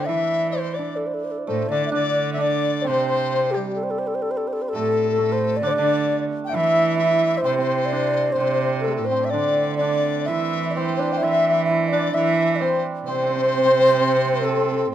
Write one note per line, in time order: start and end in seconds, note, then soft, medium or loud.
0.00 1.47 A3 medium
0.00 1.27 C4 medium
0.00 0.78 D4 medium
0.07 1.00 E3 medium
0.07 3.57 E4 medium
0.07 0.54 E5 medium
0.07 0.50 E5 medium
0.51 0.76 C5 medium
0.51 0.78 C5 medium
0.74 0.99 D5 medium
0.74 0.98 D5 medium
0.79 1.71 D4 medium
0.96 1.08 A4 medium
1.07 1.16 C5 medium
1.14 1.26 A4 soft
1.24 1.33 C5 medium
1.31 1.40 A4 soft
1.38 1.46 C5 soft
1.46 1.69 A2 medium
1.46 4.75 A3 medium
1.46 1.69 A4 medium
1.46 1.70 C5 medium
1.69 1.92 D3 medium
1.69 1.91 D4 medium
1.69 1.85 D5 medium
1.69 1.92 D5 medium
1.86 1.92 E5 medium
1.91 2.90 D3 medium
1.91 2.37 D4 medium
1.91 2.16 D5 medium
1.91 2.31 D5 medium
2.33 2.83 D5 medium
2.33 2.43 E5 medium
2.38 5.63 D4 medium
2.38 2.89 D5 medium
2.82 6.85 C4 medium
2.82 3.53 C5 medium
2.87 3.79 C3 medium
2.87 3.56 C5 medium
3.51 3.75 G4 medium
3.51 3.78 G4 medium
3.55 4.81 G3 medium
3.75 3.85 A4 medium
3.83 3.92 C5 medium
3.90 4.00 A4 medium
3.99 4.09 C5 medium
4.07 4.16 A4 medium
4.15 4.24 C5 medium
4.22 4.32 A4 medium
4.31 4.39 C5 medium
4.37 4.49 A4 medium
4.48 4.54 C5 medium
4.53 4.63 A4 medium
4.62 4.70 C5 medium
4.69 5.09 A4 loud
4.73 5.63 A2 medium
4.73 5.18 A3 medium
4.73 5.59 A4 medium
5.10 5.34 A4 medium
5.18 8.86 A3 medium
5.32 5.58 C5 medium
5.57 5.68 D5 loud
5.62 5.76 D3 medium
5.62 5.78 D4 medium
5.62 5.75 D5 medium
5.67 5.73 C5 medium
5.71 6.19 D5 loud
5.77 6.25 D3 medium
5.77 7.92 D4 medium
5.77 6.24 D5 medium
6.44 6.51 G5 medium
6.44 6.57 G5 medium
6.50 7.40 E3 medium
6.50 6.93 E5 loud
6.54 6.97 E4 medium
6.54 6.98 E5 medium
6.94 10.27 E4 medium
6.94 7.39 E5 loud
6.99 7.41 E5 medium
7.38 7.52 C5 loud
7.44 8.35 C3 medium
7.44 7.58 C4 medium
7.44 7.57 C5 medium
7.52 7.87 C5 loud
7.58 8.40 C4 medium
7.58 8.33 C5 medium
7.85 8.34 D5 loud
7.92 9.33 D4 medium
8.32 8.80 C5 medium
8.32 8.85 C5 medium
8.38 9.00 C3 medium
8.38 9.11 C4 medium
8.80 8.92 A4 medium
8.80 8.96 A4 medium
8.87 13.30 A3 medium
8.91 8.95 G4 medium
8.91 9.06 A4 medium
8.96 9.35 A2 medium
8.96 9.08 A4 medium
9.05 9.32 C5 medium
9.05 9.26 C5 medium
9.11 10.76 C4 medium
9.25 9.31 E5 medium
9.30 10.31 D3 medium
9.30 9.80 D4 medium
9.30 9.77 D5 medium
9.30 9.75 D5 medium
9.75 10.23 D5 medium
9.75 10.28 D5 medium
9.81 10.99 D4 medium
10.24 11.21 E4 medium
10.24 10.65 E5 medium
10.24 10.79 E5 medium
10.29 11.24 E3 medium
10.70 10.72 D5 medium
10.76 12.61 C4 medium
10.76 11.25 C5 medium
10.95 11.14 D5 medium
10.99 11.92 D4 medium
11.13 11.19 G5 medium
11.17 11.64 E5 loud
11.22 12.13 E3 medium
11.22 11.69 E4 medium
11.22 11.67 E5 medium
11.65 11.90 E5 loud
11.70 12.14 E4 medium
11.89 14.95 D4 medium
11.89 12.12 D5 medium
11.89 12.16 D5 medium
12.12 12.81 E3 medium
12.12 14.95 E4 medium
12.12 12.57 E5 loud
12.12 12.63 E5 medium
12.56 12.61 D5 medium
12.60 13.07 C4 medium
12.60 12.84 C5 medium
12.60 12.85 C5 medium
13.05 14.88 C3 medium
13.05 13.14 C4 medium
13.05 14.45 C5 loud
13.05 14.46 C5 medium
13.15 13.22 C4 medium
13.23 13.29 C4 medium
13.30 13.35 C4 medium
13.36 13.43 C4 medium
13.43 13.53 C4 soft
13.53 13.57 C4 medium
13.58 13.65 C4 soft
13.65 13.71 C4 medium
13.71 13.79 C4 soft
13.80 13.88 C4 medium
13.88 13.94 C4 medium
13.94 14.00 C4 medium
14.01 14.08 C4 soft
14.08 14.17 C4 medium
14.17 14.25 C4 soft
14.25 14.32 C4 medium
14.33 14.39 C4 medium
14.40 14.48 C4 medium
14.40 14.91 A4 medium
14.45 14.56 C4 medium
14.45 14.91 A4 medium
14.57 14.63 C4 medium
14.64 14.71 C4 medium
14.72 14.95 C4 medium
14.91 14.95 A2 medium
14.91 14.95 A4 medium